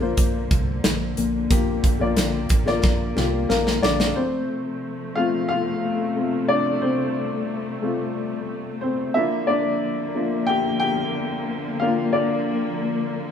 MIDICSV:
0, 0, Header, 1, 5, 480
1, 0, Start_track
1, 0, Key_signature, -1, "major"
1, 0, Tempo, 665188
1, 1088, Time_signature, 4, 2, 24, 8
1, 9608, End_track
2, 0, Start_track
2, 0, Title_t, "Grand piano"
2, 0, Program_c, 0, 0
2, 0, Control_c, 0, 64, 127
2, 0, Note_on_c, 0, 46, 64
2, 0, Note_on_c, 0, 58, 67
2, 0, Note_on_c, 0, 65, 66
2, 0, Note_on_c, 0, 74, 70
2, 3, Note_off_c, 0, 58, 0
2, 3, Note_on_c, 0, 58, 72
2, 9, Note_off_c, 0, 65, 0
2, 9, Note_on_c, 0, 65, 63
2, 15, Note_on_c, 0, 72, 79
2, 849, Note_off_c, 0, 46, 0
2, 849, Note_on_c, 0, 46, 70
2, 903, Note_off_c, 0, 58, 0
2, 906, Note_off_c, 0, 65, 0
2, 910, Note_off_c, 0, 72, 0
2, 1084, Note_on_c, 0, 58, 72
2, 1090, Note_on_c, 0, 65, 67
2, 1096, Note_on_c, 0, 67, 86
2, 1423, Note_off_c, 0, 58, 0
2, 1426, Note_off_c, 0, 65, 0
2, 1429, Note_off_c, 0, 67, 0
2, 1440, Note_on_c, 0, 58, 66
2, 1446, Note_on_c, 0, 65, 68
2, 1453, Note_off_c, 0, 74, 0
2, 1453, Note_on_c, 0, 74, 81
2, 1540, Note_off_c, 0, 46, 0
2, 1893, Note_off_c, 0, 58, 0
2, 1896, Note_off_c, 0, 65, 0
2, 1899, Note_off_c, 0, 74, 0
2, 1919, Note_on_c, 0, 58, 75
2, 1925, Note_on_c, 0, 65, 68
2, 1930, Note_on_c, 0, 74, 86
2, 2260, Note_off_c, 0, 58, 0
2, 2263, Note_off_c, 0, 65, 0
2, 2266, Note_off_c, 0, 74, 0
2, 2278, Note_on_c, 0, 58, 68
2, 2284, Note_on_c, 0, 65, 73
2, 2291, Note_on_c, 0, 67, 75
2, 2517, Note_off_c, 0, 58, 0
2, 2518, Note_on_c, 0, 70, 88
2, 2521, Note_on_c, 0, 77, 73
2, 2528, Note_on_c, 0, 58, 63
2, 2746, Note_off_c, 0, 70, 0
2, 2751, Note_off_c, 0, 58, 0
2, 2761, Note_on_c, 0, 74, 89
2, 2772, Note_on_c, 0, 62, 67
2, 2815, Note_off_c, 0, 74, 0
2, 2826, Note_off_c, 0, 62, 0
2, 2959, Note_off_c, 0, 65, 0
2, 2963, Note_off_c, 0, 67, 0
2, 2976, Note_off_c, 0, 77, 0
2, 3000, Note_on_c, 0, 72, 92
2, 3010, Note_on_c, 0, 60, 72
2, 3017, Control_c, 0, 64, 0
2, 3138, Control_c, 0, 64, 127
2, 3700, Note_off_c, 0, 60, 0
2, 3720, Note_on_c, 0, 77, 96
2, 3723, Note_on_c, 0, 57, 57
2, 3728, Note_on_c, 0, 60, 49
2, 3732, Note_on_c, 0, 65, 85
2, 3746, Note_off_c, 0, 72, 0
2, 3947, Note_off_c, 0, 77, 0
2, 3955, Note_off_c, 0, 65, 0
2, 3958, Note_on_c, 0, 77, 104
2, 3974, Note_on_c, 0, 65, 84
2, 4416, Note_off_c, 0, 57, 0
2, 4419, Note_off_c, 0, 60, 0
2, 4444, Note_off_c, 0, 65, 0
2, 4449, Note_on_c, 0, 57, 49
2, 4452, Note_on_c, 0, 60, 45
2, 4455, Note_on_c, 0, 65, 53
2, 4664, Note_off_c, 0, 57, 0
2, 4666, Note_off_c, 0, 60, 0
2, 4668, Note_off_c, 0, 65, 0
2, 4679, Note_on_c, 0, 74, 97
2, 4695, Note_on_c, 0, 62, 75
2, 4705, Note_off_c, 0, 77, 0
2, 4915, Note_off_c, 0, 62, 0
2, 4919, Note_on_c, 0, 72, 88
2, 4931, Note_off_c, 0, 74, 0
2, 4936, Note_on_c, 0, 60, 74
2, 5638, Note_off_c, 0, 60, 0
2, 5644, Note_on_c, 0, 57, 61
2, 5648, Note_on_c, 0, 60, 53
2, 5653, Note_on_c, 0, 65, 64
2, 5855, Note_off_c, 0, 72, 0
2, 5965, Note_off_c, 0, 57, 0
2, 5967, Note_off_c, 0, 60, 0
2, 5970, Note_off_c, 0, 65, 0
2, 6358, Note_on_c, 0, 72, 84
2, 6375, Note_on_c, 0, 60, 77
2, 6595, Note_off_c, 0, 60, 0
2, 6597, Note_on_c, 0, 76, 92
2, 6605, Note_on_c, 0, 58, 55
2, 6609, Note_on_c, 0, 62, 58
2, 6610, Note_off_c, 0, 72, 0
2, 6613, Note_on_c, 0, 65, 68
2, 6615, Note_on_c, 0, 64, 75
2, 6617, Control_c, 0, 64, 0
2, 6755, Control_c, 0, 64, 127
2, 6834, Note_on_c, 0, 74, 88
2, 6835, Note_off_c, 0, 64, 0
2, 6842, Note_off_c, 0, 62, 0
2, 6850, Note_off_c, 0, 76, 0
2, 6853, Note_on_c, 0, 62, 80
2, 7298, Note_off_c, 0, 58, 0
2, 7302, Note_off_c, 0, 65, 0
2, 7316, Note_off_c, 0, 62, 0
2, 7324, Note_on_c, 0, 58, 53
2, 7326, Note_on_c, 0, 62, 51
2, 7329, Note_on_c, 0, 65, 57
2, 7542, Note_off_c, 0, 58, 0
2, 7543, Note_off_c, 0, 62, 0
2, 7545, Note_off_c, 0, 65, 0
2, 7552, Note_on_c, 0, 79, 108
2, 7576, Note_on_c, 0, 67, 89
2, 7583, Note_off_c, 0, 74, 0
2, 7780, Note_off_c, 0, 79, 0
2, 7791, Note_on_c, 0, 79, 112
2, 7796, Note_off_c, 0, 67, 0
2, 7815, Note_on_c, 0, 67, 83
2, 8503, Note_off_c, 0, 67, 0
2, 8512, Note_on_c, 0, 77, 97
2, 8526, Note_on_c, 0, 58, 57
2, 8530, Note_on_c, 0, 62, 56
2, 8534, Note_on_c, 0, 65, 78
2, 8542, Note_off_c, 0, 79, 0
2, 8751, Note_on_c, 0, 74, 85
2, 8756, Note_off_c, 0, 65, 0
2, 8761, Note_off_c, 0, 62, 0
2, 8768, Note_off_c, 0, 77, 0
2, 8772, Note_on_c, 0, 62, 68
2, 9219, Note_off_c, 0, 58, 0
2, 9608, Note_off_c, 0, 62, 0
2, 9608, Note_off_c, 0, 74, 0
2, 9608, End_track
3, 0, Start_track
3, 0, Title_t, "String section"
3, 0, Program_c, 1, 48
3, 0, Note_on_c, 1, 50, 74
3, 0, Note_on_c, 1, 53, 65
3, 0, Note_on_c, 1, 58, 81
3, 829, Note_off_c, 1, 58, 0
3, 842, Note_on_c, 1, 58, 82
3, 2976, Note_off_c, 1, 53, 0
3, 2981, Note_off_c, 1, 50, 0
3, 2984, Note_off_c, 1, 58, 0
3, 3006, Note_on_c, 1, 57, 90
3, 3007, Note_on_c, 1, 48, 82
3, 3009, Note_on_c, 1, 53, 75
3, 4909, Note_off_c, 1, 53, 0
3, 4926, Note_on_c, 1, 55, 72
3, 6578, Note_off_c, 1, 48, 0
3, 6578, Note_off_c, 1, 57, 0
3, 6590, Note_off_c, 1, 55, 0
3, 6607, Note_on_c, 1, 53, 79
3, 6608, Note_on_c, 1, 50, 84
3, 6609, Note_on_c, 1, 58, 96
3, 9608, Note_off_c, 1, 50, 0
3, 9608, Note_off_c, 1, 53, 0
3, 9608, Note_off_c, 1, 58, 0
3, 9608, End_track
4, 0, Start_track
4, 0, Title_t, "Fingered electric bass"
4, 0, Program_c, 2, 33
4, 0, Note_on_c, 2, 34, 81
4, 84, Note_off_c, 2, 34, 0
4, 126, Note_on_c, 2, 34, 97
4, 324, Note_off_c, 2, 34, 0
4, 368, Note_on_c, 2, 36, 79
4, 565, Note_off_c, 2, 36, 0
4, 611, Note_on_c, 2, 34, 85
4, 807, Note_off_c, 2, 34, 0
4, 849, Note_on_c, 2, 34, 94
4, 1045, Note_off_c, 2, 34, 0
4, 1086, Note_on_c, 2, 34, 94
4, 1284, Note_off_c, 2, 34, 0
4, 1449, Note_on_c, 2, 34, 87
4, 1547, Note_off_c, 2, 34, 0
4, 1568, Note_on_c, 2, 34, 91
4, 1765, Note_off_c, 2, 34, 0
4, 1805, Note_on_c, 2, 33, 89
4, 2003, Note_off_c, 2, 33, 0
4, 2046, Note_on_c, 2, 34, 89
4, 2244, Note_off_c, 2, 34, 0
4, 2287, Note_on_c, 2, 36, 86
4, 2485, Note_off_c, 2, 36, 0
4, 2525, Note_on_c, 2, 34, 97
4, 2723, Note_off_c, 2, 34, 0
4, 2767, Note_on_c, 2, 34, 83
4, 2964, Note_off_c, 2, 34, 0
4, 9608, End_track
5, 0, Start_track
5, 0, Title_t, "Drums"
5, 125, Note_on_c, 9, 42, 89
5, 127, Note_on_c, 9, 36, 77
5, 197, Note_off_c, 9, 42, 0
5, 200, Note_off_c, 9, 36, 0
5, 367, Note_on_c, 9, 42, 47
5, 368, Note_on_c, 9, 36, 80
5, 439, Note_off_c, 9, 42, 0
5, 440, Note_off_c, 9, 36, 0
5, 607, Note_on_c, 9, 38, 105
5, 607, Note_on_c, 9, 42, 72
5, 679, Note_off_c, 9, 38, 0
5, 679, Note_off_c, 9, 42, 0
5, 846, Note_on_c, 9, 42, 60
5, 918, Note_off_c, 9, 42, 0
5, 1086, Note_on_c, 9, 42, 87
5, 1087, Note_on_c, 9, 36, 97
5, 1158, Note_off_c, 9, 42, 0
5, 1159, Note_off_c, 9, 36, 0
5, 1326, Note_on_c, 9, 36, 81
5, 1327, Note_on_c, 9, 42, 58
5, 1399, Note_off_c, 9, 36, 0
5, 1399, Note_off_c, 9, 42, 0
5, 1563, Note_on_c, 9, 42, 83
5, 1566, Note_on_c, 9, 38, 90
5, 1635, Note_off_c, 9, 42, 0
5, 1638, Note_off_c, 9, 38, 0
5, 1799, Note_on_c, 9, 42, 67
5, 1806, Note_on_c, 9, 36, 81
5, 1871, Note_off_c, 9, 42, 0
5, 1878, Note_off_c, 9, 36, 0
5, 1925, Note_on_c, 9, 38, 32
5, 1997, Note_off_c, 9, 38, 0
5, 2046, Note_on_c, 9, 36, 86
5, 2047, Note_on_c, 9, 38, 54
5, 2119, Note_off_c, 9, 36, 0
5, 2119, Note_off_c, 9, 38, 0
5, 2285, Note_on_c, 9, 38, 61
5, 2357, Note_off_c, 9, 38, 0
5, 2525, Note_on_c, 9, 38, 68
5, 2597, Note_off_c, 9, 38, 0
5, 2648, Note_on_c, 9, 38, 69
5, 2720, Note_off_c, 9, 38, 0
5, 2766, Note_on_c, 9, 38, 85
5, 2838, Note_off_c, 9, 38, 0
5, 2886, Note_on_c, 9, 38, 80
5, 2958, Note_off_c, 9, 38, 0
5, 9608, End_track
0, 0, End_of_file